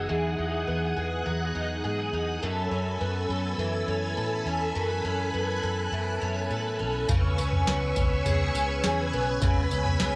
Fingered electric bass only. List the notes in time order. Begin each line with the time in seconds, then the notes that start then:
0.10 E2
0.39 E2
0.68 E2
0.97 E2
1.27 E2
1.55 E2
1.85 G#2
2.13 E2
2.43 F#2
2.71 F#2
3.01 F#2
3.29 F#2
3.58 F#2
3.88 F#2
4.17 A2
4.46 E2
4.76 F#2
5.05 F#2
5.34 F#2
5.64 F#2
5.92 F#2
6.22 F#2
6.50 A2
6.80 B1
7.09 C#2
7.38 C#2
7.67 C#2
7.97 C#2
8.26 C#2
8.55 C#2
8.85 E2
9.14 B1
9.42 C#2
9.72 C#2
10.01 C#2